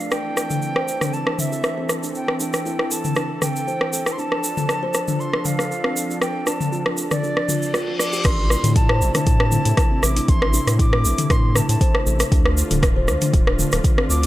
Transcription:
Already playing: flute F5
0.11 analog synth pad E3 C4 A4, kalimba D4, flute G5, cross-stick, shaker
0.37 cross-stick, shaker
0.50 kalimba A4, mid tom, shaker
0.62 shaker
0.76 kalimba C5, cross-stick
0.88 shaker
1.01 kalimba D4, cross-stick, mid tom, shaker
1.13 flute A5, shaker
1.27 kalimba D4, cross-stick
1.39 flute E5, mid tom, shaker
1.52 kalimba A4, shaker
1.63 cross-stick, shaker
1.78 kalimba C4
1.89 cross-stick, shaker
2.03 kalimba D4, shaker
2.15 flute G5, shaker
2.28 cross-stick
2.40 kalimba D4, flute G5, shaker
2.53 cross-stick, shaker
2.66 kalimba E4, shaker
2.79 cross-stick
2.91 kalimba A4, flute A5, shaker
3.04 mid tom, shaker
3.15 kalimba D4, cross-stick, shaker
3.42 kalimba A4, flute G5, cross-stick, mid tom, shaker
3.56 shaker
3.67 kalimba C5, shaker
3.81 cross-stick
3.93 kalimba A4, shaker
4.06 cross-stick, shaker
4.12 flute C6
4.18 analog synth pad F3 D4, kalimba D4, flute A5, shaker
4.32 cross-stick
4.44 shaker
4.57 kalimba A4, mid tom, shaker
4.69 cross-stick, shaker
4.83 kalimba C5
4.94 cross-stick, shaker
5.08 kalimba D4, mid tom, shaker
5.20 flute C6, shaker
5.33 kalimba D4, cross-stick
5.45 flute F5, mid tom, shaker
5.59 kalimba A4, cross-stick, shaker
5.72 shaker
5.84 kalimba C4, cross-stick
5.96 shaker
6.10 kalimba D4, shaker
6.21 flute G5, cross-stick, shaker
6.47 kalimba D4, flute A5, cross-stick, shaker
6.61 mid tom, shaker
6.72 kalimba F4, shaker
6.86 cross-stick
6.97 kalimba A4, shaker
7.11 flute D5, cross-stick, mid tom, shaker
7.23 kalimba D4, reverse cymbal, shaker
7.37 cross-stick
7.49 kalimba F4, mid tom, shaker
7.62 shaker
7.74 kalimba F4, cross-stick, shaker
7.88 kalimba F4
7.99 kalimba D5, flute D6, cross-stick, shaker
8.13 kalimba G4, shaker
8.25 analog synth bass A1, analog synth pad C3 A3 E4, kalimba D4, flute C6, kick, cross-stick, closed hi-hat, crash, shaker
8.50 cross-stick, shaker
8.64 analog synth bass A2, kalimba A4, closed hi-hat, mid tom, shaker
8.76 flute A5, kick, closed hi-hat, shaker
8.89 kalimba C5, cross-stick
9.01 analog synth bass A1, shaker
9.15 kalimba D4, flute A5, cross-stick, closed hi-hat, mid tom, shaker
9.27 analog synth bass A2, kick, closed hi-hat, shaker
9.40 kalimba D4, cross-stick
9.52 mid tom, shaker
9.65 analog synth bass A2, kalimba A4, closed hi-hat, shaker
9.77 kick, cross-stick, closed hi-hat, shaker
9.91 kalimba C4
10.03 analog synth bass A1, flute D6, cross-stick, shaker
10.17 kalimba D4, closed hi-hat, shaker
10.28 analog synth bass A1, flute C6, kick, closed hi-hat, shaker
10.42 cross-stick
10.54 kalimba D4, shaker
10.67 analog synth bass A2, cross-stick, closed hi-hat, shaker
10.79 kalimba E4, flute D6, kick, closed hi-hat, shaker
10.93 cross-stick
11.05 analog synth bass A1, kalimba A4, shaker
11.18 closed hi-hat, mid tom, shaker
11.30 analog synth bass A2, kalimba D4, flute C6, kick, cross-stick, closed hi-hat, shaker
11.55 kalimba A4, flute A5, cross-stick, mid tom, shaker
11.69 analog synth bass A2, flute A5, closed hi-hat, shaker
11.81 kalimba C5, kick, closed hi-hat, shaker
11.95 cross-stick
12.06 analog synth bass A1, kalimba A4, shaker
12.20 cross-stick, closed hi-hat, shaker
12.32 analog synth bass D2, analog synth pad D3 F4, kalimba D4, kick, closed hi-hat, shaker
12.45 cross-stick
12.57 shaker
12.71 analog synth bass D1, kalimba A4, closed hi-hat, mid tom, shaker
12.83 kick, cross-stick, closed hi-hat, shaker
12.96 kalimba C5
13.08 analog synth bass D2, cross-stick, shaker
13.22 kalimba D4, closed hi-hat, mid tom, shaker
13.33 analog synth bass D1, kick, closed hi-hat, shaker
13.47 kalimba D4, cross-stick
13.59 mid tom, shaker
13.72 analog synth bass D1, kalimba A4, cross-stick, closed hi-hat, shaker
13.84 kick, closed hi-hat, shaker
13.98 kalimba C4, cross-stick
14.09 analog synth bass D2, flute D6, shaker
14.23 closed hi-hat, shaker

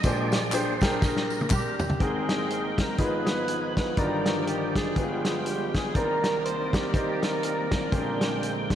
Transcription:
0.03 grand piano A#1 A#2 D4 G4 G#4 C5, tonewheel organ A#2 G#3 D4 D5, kick, closed hi-hat, tambourine
0.32 snare, closed hi-hat, tambourine
0.52 grand piano D4 G4 G#4 C5, tonewheel organ C5, clap, closed hi-hat, tambourine
0.81 grand piano D4 G4 G#4 A#4, kick, snare, closed hi-hat, tambourine
1.01 tonewheel organ A#4, kick, snare, tambourine
1.16 snare
1.30 tambourine
1.41 high tom
1.50 horn section C4 D4 G4, alto saxophone G4, kick, clap, mid tom, tambourine
1.79 floor tom, tambourine
1.90 floor tom
1.99 grand piano G#1 G#2 C4 G#4 A#4 G5, tonewheel organ G#3 C4 A#4 G5, string section A#3 C4 G5, horn section C4 D#4 G#4, alto saxophone G#4, kick, closed hi-hat
2.29 snare, closed hi-hat
2.50 closed hi-hat
2.78 horn section A#4, alto saxophone A#4, kick, snare, closed hi-hat
2.98 grand piano G#1 G#2 D#4 F4 G#4 A#4, string section D#3 B3 F4, tonewheel organ F3 B3 D#4 G#4, horn section D#4 F4 B4, alto saxophone B4, kick, closed hi-hat
3.05 grand piano B4
3.27 snare, closed hi-hat
3.48 closed hi-hat
3.77 horn section B4, alto saxophone B4, kick, snare, closed hi-hat
3.97 grand piano G1 G2 D#3 F4 F#4 D5, tonewheel organ G2 D#3 F3 F#4 D5, string section G3 D5, horn section D4 D#4 A#4, alto saxophone A#4, kick, closed hi-hat
4.03 tonewheel organ G4, grand piano G4
4.26 snare, closed hi-hat
4.47 alto saxophone G4, horn section G4, closed hi-hat
4.75 horn section B3 F4 G#4, alto saxophone G#4, kick, snare, closed hi-hat
4.96 grand piano G1 G2 F4 G4 G#4 B4, string section F3 B3 G5, tonewheel organ G3 G#3 B3 F4, kick, closed hi-hat
5.25 alto saxophone G#4, horn section G#4, snare, closed hi-hat
5.46 alto saxophone G4, horn section G4, closed hi-hat
5.75 alto saxophone G#4, horn section G#4, kick, snare, closed hi-hat
5.95 grand piano C2 C3 D#3 A#4 C5 D5, tonewheel organ D#3 C4 A#4 D5, string section D#3 A#3 C4 D5, horn section D4 D#4 A#4, alto saxophone A#4, kick, closed hi-hat
6.24 snare, closed hi-hat
6.44 horn section D#4 G4 C5, alto saxophone C5, closed hi-hat
6.73 alto saxophone G4, kick, snare, closed hi-hat
6.94 horn section A#3 D#4 G4, grand piano D#4 A#4 C5 D5, kick, closed hi-hat
7.23 horn section A#4, alto saxophone A#4, snare, closed hi-hat
7.43 horn section A#4, alto saxophone A#4, closed hi-hat
7.71 horn section D4 F4 A#4, alto saxophone A#4, kick, snare, closed hi-hat
7.91 grand piano A#1 A#2 C#4 G4 G#4 C5, tonewheel organ D3 G#3 A#3 C4 G5, string section G#3 C4 G5, kick, closed hi-hat
7.98 grand piano D4
8.21 snare, closed hi-hat
8.43 closed hi-hat
8.70 kick, snare, closed hi-hat

